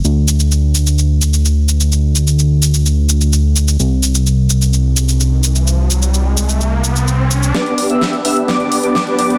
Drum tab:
HH |----------------|----------------|----------------|----------------|
SH |x-xxx-xxx-xxx-xx|x-xxx-xxx-xxx-xx|x-xxx-xxx-xxx-xx|x-xxx-xxx-xxx-xx|
SD |----------------|----------------|----------------|----------------|

HH |xxoxxxoxxxoxxxox|
SH |----------------|
SD |o---o---o---o---|